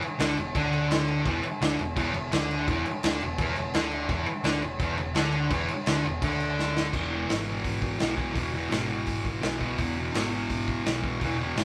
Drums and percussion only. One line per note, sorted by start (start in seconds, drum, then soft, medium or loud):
0.02 crash medium
0.19 snare loud
0.19 crash medium
0.37 crash medium
0.55 kick loud
0.55 crash medium
0.73 crash medium
0.91 snare loud
0.91 crash medium
1.08 crash medium
1.25 kick loud
1.25 crash medium
1.43 crash medium
1.61 snare loud
1.61 crash medium
1.79 crash medium
1.97 kick loud
1.97 crash medium
2.14 crash medium
2.32 snare loud
2.32 crash medium
2.51 crash medium
2.68 kick loud
2.68 crash medium
2.86 crash medium
3.03 snare loud
3.03 crash medium
3.21 crash medium
3.38 kick loud
3.38 crash loud
3.56 crash medium
3.74 snare loud
3.74 crash medium
3.91 crash medium
4.09 kick loud
4.09 crash medium
4.26 crash medium
4.44 snare loud
4.44 crash medium
4.62 crash medium
4.79 kick loud
4.79 crash medium
4.97 crash medium
5.15 snare loud
5.15 crash medium
5.32 crash medium
5.50 kick loud
5.50 crash medium
5.68 crash medium
5.86 snare loud
5.86 crash medium
6.05 crash medium
6.22 kick loud
6.22 crash loud
6.40 crash medium
6.59 snare medium
6.77 snare loud
6.93 kick loud
6.93 crash loud
7.29 snare loud
7.29 open hi-hat medium
7.64 kick medium
7.64 open hi-hat medium
7.82 kick medium
7.99 snare loud
7.99 open hi-hat medium
8.18 kick medium
8.35 kick loud
8.35 open hi-hat medium
8.71 snare loud
8.71 open hi-hat medium
9.06 kick medium
9.06 open hi-hat medium
9.25 kick medium
9.42 snare loud
9.42 open hi-hat medium
9.61 kick medium
9.78 kick loud
9.78 open hi-hat medium
10.14 snare loud
10.14 open hi-hat medium
10.24 snare soft
10.50 kick medium
10.50 open hi-hat medium
10.68 kick medium
10.86 snare loud
10.86 open hi-hat soft
11.04 kick medium
11.21 kick loud
11.21 open hi-hat medium
11.57 snare loud
11.57 open hi-hat medium